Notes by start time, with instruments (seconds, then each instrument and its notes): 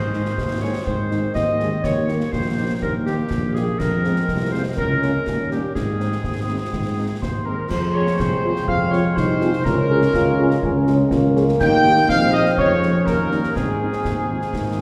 Already playing: tuba G#2, trombone section D#3 C4, woodwind section C5
0.13 french horn section D#3 G#3 D#4, trumpet section G#4, snare
0.25 snare
0.38 tuba D#2, concert bass drum, snare
0.61 french horn section D#3 G#3 D#4, trumpet section G#4, woodwind section C#5
0.86 tuba G#2, woodwind section C5, concert bass drum
1.11 french horn section D#3 G#3 D#4, trumpet section G#4, snare
1.35 tuba D#2, woodwind section D#5, concert bass drum, snare
1.59 french horn section D#3 G#3 D#4, trumpet section G#4, snare
1.83 tuba D#2, trombone section G3 A#3, woodwind section C#5, concert bass drum, snare
2.08 french horn section D#3 A#3 D#4, trumpet section G4, snare
2.20 snare
2.32 tuba A#1, woodwind section C5, concert bass drum, snare
2.57 french horn section D#3 A#3 D#4, trumpet section G4
2.82 tuba D#2, woodwind section A#4, concert bass drum
3.06 french horn section D#3 A#3 D#4, trumpet section G4, woodwind section G4, snare
3.31 tuba A#1, concert bass drum, snare
3.54 french horn section D#3 A#3 D#4, trumpet section G4, woodwind section G#4, snare
3.79 tuba F2, trombone section G#3 C4, woodwind section A#4, concert bass drum, snare, crash
4.04 french horn section G#3 C4, trumpet section F4, snare
4.16 snare
4.28 tuba C2, concert bass drum, snare
4.52 french horn section G#3 C4, trumpet section F4, woodwind section C5
4.77 tuba C#2, trombone section G#3 C#4, woodwind section A#4, concert bass drum
5.02 french horn section G#3 A#3 C#4, trumpet section F4, snare
5.26 tuba D#2, trombone section G3 C#4, concert bass drum, snare
5.50 french horn section G3 A#3 C#4, trumpet section D#4, woodwind section G4, snare
5.75 tuba G#2, trombone section G#3 C4, woodwind section G#4, concert bass drum, snare
5.99 french horn section G#3 C4, trumpet section D#4, snare
6.12 snare
6.24 tuba D#2, concert bass drum, snare
6.48 french horn section G#3 C4, trumpet section D#4
6.72 tuba G#2, concert bass drum, snare
6.97 french horn section G#3 C4, trumpet section D#4
7.21 tuba D#2, trumpet section C5, woodwind section C5, glockenspiel C6, concert bass drum, snare
7.45 french horn section G#3 C4, trumpet section D#4 A#4, woodwind section A#4, glockenspiel A#5
7.69 tuba F2, trombone section G#3 C4, euphonium G#4, woodwind section C5, trumpet section C5, glockenspiel C6, concert bass drum, snare, crash
7.93 french horn section C4 F4 G#4, woodwind section C#5, trumpet section C#5, glockenspiel C#6
8.07 snare
8.18 tuba C2, woodwind section C5, trumpet section C5, glockenspiel C6, concert bass drum, snare
8.43 french horn section C4 F4 G#4
8.56 snare
8.67 tuba F2, euphonium F4, woodwind section F5, trumpet section F5, glockenspiel F6, concert bass drum
8.91 french horn section C4 F4 G#4, woodwind section C#5, trumpet section C#5, glockenspiel C#6, snare
9.16 tuba C2, euphonium D#4, woodwind section C5, trumpet section C5, glockenspiel C6, concert bass drum, snare
9.41 french horn section C4 F4 G#4, snare
9.53 snare
9.64 tuba C#2, trombone section G#3 C#4, euphonium C#4, woodwind section A#4, trumpet section A#4, glockenspiel A#5, concert bass drum, snare
9.90 french horn section C#4 F4 G#4
10.02 snare
10.14 tuba C#2, euphonium F4, concert bass drum, snare
10.39 french horn section C#4 F4 G#4
10.51 snare
10.63 tuba C#2, euphonium C#4, concert bass drum
10.87 french horn section C#4 F4 G#4, snare
11.10 tuba C#2, euphonium A#3, concert bass drum, snare
11.36 french horn section C#4 F4 G#4, snare
11.48 snare
11.60 tuba D#2, trombone section A#3 D#4, woodwind section G5, trumpet section G5, glockenspiel G6, concert bass drum, snare, crash
11.85 french horn section A#3 D#4 G4
11.97 snare
12.09 tuba A#1, euphonium C4, trumpet section F5, woodwind section F5, glockenspiel F6, concert bass drum, snare
12.32 french horn section A#3 D#4 G4, woodwind section D#5, trumpet section D#5, glockenspiel D#6
12.46 snare
12.57 tuba F2, trombone section G#3 C#4, trumpet section C#5, woodwind section C#5, glockenspiel C#6, concert bass drum
12.82 french horn section G#3 C#4 G#4, snare
13.05 tuba D#2, trombone section G3, euphonium A#3, woodwind section A#4, trumpet section A#4, glockenspiel A#5, concert bass drum, snare
13.31 french horn section G3 C#4 D#4, snare
13.44 snare
13.55 tuba G#2, trombone section G#3 C4, euphonium C4, woodwind section G#4, trumpet section G#4, glockenspiel G#5, concert bass drum, snare
13.80 french horn section G#3 C4 D#4
13.92 snare
14.05 tuba D#2, trombone section D#3, concert bass drum, snare
14.28 trombone section F3, french horn section G#3 C4 D#4
14.42 snare
14.52 tuba G#2, trombone section D#3, concert bass drum, snare
14.78 french horn section G#3 C4 D#4